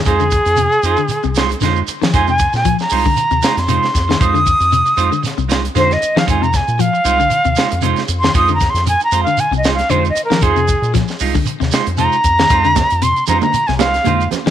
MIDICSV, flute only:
0, 0, Header, 1, 2, 480
1, 0, Start_track
1, 0, Tempo, 518135
1, 56, Time_signature, 4, 2, 24, 8
1, 13436, End_track
2, 0, Start_track
2, 0, Title_t, "Flute"
2, 0, Program_c, 0, 73
2, 39, Note_on_c, 0, 68, 110
2, 1452, Note_off_c, 0, 68, 0
2, 1982, Note_on_c, 0, 80, 95
2, 2104, Note_off_c, 0, 80, 0
2, 2127, Note_on_c, 0, 80, 95
2, 2352, Note_off_c, 0, 80, 0
2, 2371, Note_on_c, 0, 80, 85
2, 2594, Note_off_c, 0, 80, 0
2, 2607, Note_on_c, 0, 82, 79
2, 3328, Note_on_c, 0, 84, 79
2, 3342, Note_off_c, 0, 82, 0
2, 3908, Note_on_c, 0, 87, 100
2, 3921, Note_off_c, 0, 84, 0
2, 4835, Note_off_c, 0, 87, 0
2, 5347, Note_on_c, 0, 72, 105
2, 5493, Note_on_c, 0, 75, 92
2, 5507, Note_off_c, 0, 72, 0
2, 5728, Note_on_c, 0, 77, 93
2, 5742, Note_off_c, 0, 75, 0
2, 5820, Note_off_c, 0, 77, 0
2, 5833, Note_on_c, 0, 80, 80
2, 5955, Note_on_c, 0, 82, 90
2, 5968, Note_off_c, 0, 80, 0
2, 6078, Note_on_c, 0, 80, 85
2, 6092, Note_off_c, 0, 82, 0
2, 6306, Note_on_c, 0, 77, 107
2, 6319, Note_off_c, 0, 80, 0
2, 7234, Note_off_c, 0, 77, 0
2, 7592, Note_on_c, 0, 84, 87
2, 7741, Note_off_c, 0, 84, 0
2, 7747, Note_on_c, 0, 87, 96
2, 7899, Note_off_c, 0, 87, 0
2, 7913, Note_on_c, 0, 82, 80
2, 8060, Note_on_c, 0, 84, 80
2, 8074, Note_off_c, 0, 82, 0
2, 8215, Note_off_c, 0, 84, 0
2, 8229, Note_on_c, 0, 80, 86
2, 8370, Note_off_c, 0, 80, 0
2, 8376, Note_on_c, 0, 82, 89
2, 8533, Note_off_c, 0, 82, 0
2, 8553, Note_on_c, 0, 77, 89
2, 8709, Note_on_c, 0, 80, 93
2, 8723, Note_off_c, 0, 77, 0
2, 8860, Note_off_c, 0, 80, 0
2, 8870, Note_on_c, 0, 75, 77
2, 9016, Note_off_c, 0, 75, 0
2, 9022, Note_on_c, 0, 77, 86
2, 9173, Note_on_c, 0, 72, 86
2, 9187, Note_off_c, 0, 77, 0
2, 9332, Note_off_c, 0, 72, 0
2, 9350, Note_on_c, 0, 75, 84
2, 9487, Note_off_c, 0, 75, 0
2, 9493, Note_on_c, 0, 70, 90
2, 9658, Note_on_c, 0, 68, 100
2, 9672, Note_off_c, 0, 70, 0
2, 10125, Note_off_c, 0, 68, 0
2, 11099, Note_on_c, 0, 82, 99
2, 12068, Note_on_c, 0, 84, 93
2, 12082, Note_off_c, 0, 82, 0
2, 12297, Note_off_c, 0, 84, 0
2, 12304, Note_on_c, 0, 82, 85
2, 12422, Note_off_c, 0, 82, 0
2, 12427, Note_on_c, 0, 82, 88
2, 12666, Note_on_c, 0, 80, 78
2, 12679, Note_off_c, 0, 82, 0
2, 12761, Note_off_c, 0, 80, 0
2, 12767, Note_on_c, 0, 77, 108
2, 13239, Note_off_c, 0, 77, 0
2, 13436, End_track
0, 0, End_of_file